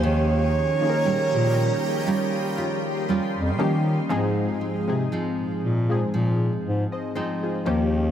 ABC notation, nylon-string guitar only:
X:1
M:4/4
L:1/8
Q:"Swing 16ths" 1/4=59
K:Ab
V:1 name="Nylon-string guitar"
E,2 G, D [G,DF] F [G,DF] G, | [A,,E] C [F,CE]2 F,2 [F,CE] E, |]